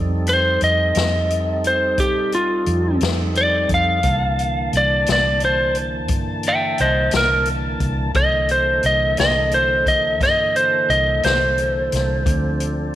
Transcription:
Already playing: fingered electric bass F2, tonewheel organ G3 C4 D#4 A4
0.27 lead electric guitar C5, closed hi-hat
0.61 fingered electric bass F2, lead electric guitar D#5, closed hi-hat
0.95 fingered electric bass F2, snare, closed hi-hat
1.30 closed hi-hat
1.64 lead electric guitar C5, closed hi-hat
1.98 fingered electric bass C2, lead electric guitar G4, kick, closed hi-hat
2.32 lead electric guitar F4, closed hi-hat
2.66 fingered electric bass F2, closed hi-hat
3.01 fingered electric bass F2, snare, closed hi-hat
3.35 lead electric guitar D5, closed hi-hat
3.69 fingered electric bass F2, kick, closed hi-hat
3.74 lead electric guitar F5
4.03 fingered electric bass C2, tonewheel organ D3 E3 A#3 A5, kick, closed hi-hat
4.39 closed hi-hat
4.73 fingered electric bass C2, closed hi-hat
4.77 lead electric guitar D5
5.06 fingered electric bass C2, snare, closed hi-hat
5.12 lead electric guitar D5
5.40 closed hi-hat
5.45 lead electric guitar C5
5.75 closed hi-hat
6.08 fingered electric bass G2, kick, closed hi-hat
6.43 closed hi-hat
6.48 lead electric guitar E5 G5
6.78 fingered electric bass C2, lead electric guitar C5 D#5, closed hi-hat
7.11 fingered electric bass C2, snare, closed hi-hat
7.17 lead electric guitar A#4
7.45 closed hi-hat
7.80 fingered electric bass C2, kick, closed hi-hat
8.15 fingered electric bass C2, tonewheel organ D3 E3 A#3 A4, lead electric guitar D#5, kick, closed hi-hat
8.49 lead electric guitar C5, closed hi-hat
8.83 fingered electric bass C2, lead electric guitar D#5, closed hi-hat
9.17 fingered electric bass C2, lead electric guitar D#5, snare, closed hi-hat
9.51 lead electric guitar C5, closed hi-hat
9.86 lead electric guitar D#5, kick, closed hi-hat
10.21 fingered electric bass G2, lead electric guitar D#5, kick, snare, closed hi-hat
10.56 lead electric guitar C5, closed hi-hat
10.89 fingered electric bass C2, lead electric guitar D#5, closed hi-hat
11.23 fingered electric bass C2, lead electric guitar C5, snare, closed hi-hat
11.58 closed hi-hat
11.92 fingered electric bass C2, snare, closed hi-hat
12.25 fingered electric bass D2, tonewheel organ F3 C4 D4 A4, kick, closed hi-hat
12.60 closed hi-hat

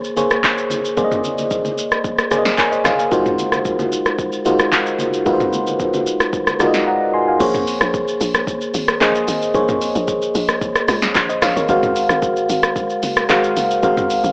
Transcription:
Already playing: fm electric piano A#3 G#4 C5 C#5
0.04 shaker
0.16 fm electric piano A#3 G#4 C5 C#5, high conga, shaker
0.31 cross-stick, shaker
0.44 kick, clap, shaker
0.58 shaker
0.70 high conga, shaker
0.85 shaker
0.97 fm electric piano A#3 G#4 C5 D5, kick, low conga, shaker
1.04 fm electric piano D#5
1.11 mid tom, shaker
1.24 high conga, shaker
1.38 high conga, shaker
1.51 kick, low conga, shaker
1.65 high conga, shaker
1.78 shaker
1.92 cross-stick, shaker
2.04 kick, shaker
2.18 cross-stick, shaker
2.31 fm electric piano A#3 G#4 C5 D5, cross-stick, high conga, shaker
2.38 fm electric piano D#5
2.45 snare, shaker
2.58 fm electric piano A#4 C#5 G#5, kick, clap, shaker
2.72 fm electric piano C5 D#5, shaker
2.84 fm electric piano C#5 D#5 F5, cross-stick, snare, high conga, shaker
2.99 fm electric piano F5 G#5, shaker
3.11 fm electric piano G#3 D#4 F4 F#4 A#4 C5, kick, low conga, shaker
3.26 mid tom, shaker
3.38 high conga, shaker
3.52 cross-stick, high conga, shaker
3.65 kick, low conga, shaker
3.79 high conga, shaker
3.92 shaker
4.06 cross-stick, shaker
4.19 kick, shaker
4.33 shaker
4.45 fm electric piano G#3 D#4 F4 F#4 A#4 C5, high conga, shaker
4.59 cross-stick, shaker
4.72 kick, clap, shaker
4.86 shaker
4.99 high conga, shaker
5.14 shaker
5.25 fm electric piano G#3 D#4 F4 F#4 A#4 B4, kick, low conga, shaker
5.33 fm electric piano C5
5.40 mid tom, shaker
5.53 high conga, shaker
5.67 high conga, shaker
5.80 kick, low conga, shaker
5.94 high conga, shaker
6.07 shaker
6.20 cross-stick, shaker
6.33 kick, shaker
6.47 cross-stick, high conga, shaker
6.59 fm electric piano G#3 D#4 F4 F#4 A#4 D5, cross-stick, high conga, shaker
6.67 fm electric piano D#5
6.74 snare, shaker
6.87 fm electric piano F#5 A#5
7.13 fm electric piano G#5 C6
7.28 fm electric piano F5 G#5
7.40 log drum bass A#1, fm electric piano A#3 G#4 C5 C#5, kick, crash, shaker
7.54 mid tom, shaker
7.67 open hi-hat, shaker
7.81 log drum bass A#1, cross-stick, shaker
7.94 kick, shaker
8.08 shaker
8.21 log drum bass A#1, open hi-hat, shaker
8.34 cross-stick, shaker
8.47 kick, shaker
8.61 shaker
8.74 log drum bass G#1, open hi-hat, shaker
8.88 cross-stick, shaker
9.00 log drum bass A#1, fm electric piano A#3 G#4 C5 D#5, kick, clap, shaker
9.15 shaker
9.28 log drum bass G#1, open hi-hat, shaker
9.42 shaker
9.54 log drum bass A#1, fm electric piano A#3 G#4 C5 C#5, kick, shaker
9.69 mid tom, shaker
9.82 open hi-hat, shaker
9.95 log drum bass A#1, shaker
10.08 kick, shaker
10.22 shaker
10.35 log drum bass A#1, open hi-hat, shaker
10.49 cross-stick, shaker
10.61 kick, shaker
10.75 cross-stick, shaker
10.88 log drum bass C#2, cross-stick, open hi-hat, shaker
11.02 snare, shaker
11.15 log drum bass A#1, kick, clap, shaker
11.29 fm electric piano C5 D#5, shaker
11.42 log drum bass A#1, fm electric piano C#5 F5, cross-stick, snare, open hi-hat, shaker
11.56 log drum bass G#1, fm electric piano A#4 C#5, shaker
11.68 log drum bass G#1, fm electric piano G#3 F#4 A#4 C5 F5, kick, shaker
11.83 mid tom, shaker
11.96 open hi-hat, shaker
12.09 log drum bass G#1, cross-stick, shaker
12.22 kick, shaker
12.36 shaker
12.49 log drum bass G#1, open hi-hat, shaker
12.63 cross-stick, shaker
12.76 kick, shaker
12.90 shaker
13.03 log drum bass F#1, open hi-hat, shaker
13.17 cross-stick, shaker
13.29 log drum bass G#1, fm electric piano G#3 F#4 A#4 C5 F5, kick, clap, shaker
13.44 shaker
13.56 log drum bass F#1, open hi-hat, shaker
13.71 shaker
13.83 log drum bass G#1, fm electric piano G#3 F#4 A#4 C5 F5, kick, shaker
13.97 mid tom, shaker
14.10 open hi-hat, shaker
14.24 log drum bass G#1, shaker

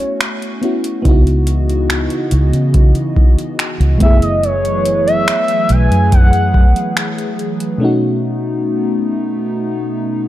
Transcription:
Already playing: analog synth pad A3 C#4 F#4, fm electric piano B3 C#4 E4 F#4, soft synth lead C#5
0.00 closed hi-hat
0.21 finger snap, closed hi-hat
0.42 closed hi-hat
0.62 fm electric piano B3 C#4 E4 F#4, closed hi-hat
0.84 closed hi-hat
1.02 fingered electric bass C#2, analog synth pad C#3 E3 B3 D#5, fm electric piano B3 D#4, kick, closed hi-hat
1.07 fm electric piano E4 F#4
1.27 closed hi-hat
1.47 closed hi-hat
1.70 closed hi-hat
1.90 finger snap, closed hi-hat
2.10 closed hi-hat
2.31 fingered electric bass C#2, closed hi-hat
2.53 fingered electric bass C#3, closed hi-hat
2.74 kick, closed hi-hat
2.95 closed hi-hat
3.16 kick
3.38 closed hi-hat
3.59 finger snap, closed hi-hat
3.80 fingered electric bass C#2, closed hi-hat
3.98 fingered electric bass F#1, analog synth pad F#3 A3 G#4 B4, fm electric piano G#3 B3, soft synth lead E5, kick, closed hi-hat, open hi-hat
4.03 fm electric piano A3 E4 G#4
4.22 soft synth lead D#5, closed hi-hat
4.43 soft synth lead C#5, closed hi-hat
4.65 closed hi-hat
4.86 closed hi-hat
5.07 soft synth lead E5, closed hi-hat
5.28 finger snap, closed hi-hat
5.48 closed hi-hat
5.69 fingered electric bass B1, soft synth lead G#5, closed hi-hat
5.91 fingered electric bass F#2, closed hi-hat
6.12 soft synth lead F#5, kick, closed hi-hat
6.33 closed hi-hat
6.54 kick
6.76 closed hi-hat
6.97 finger snap, closed hi-hat
7.18 closed hi-hat
7.39 closed hi-hat
7.60 closed hi-hat
7.78 fm electric piano B2 A3 C#4, analog synth pad A3 B3 D#4
7.83 fm electric piano D#4 F#4

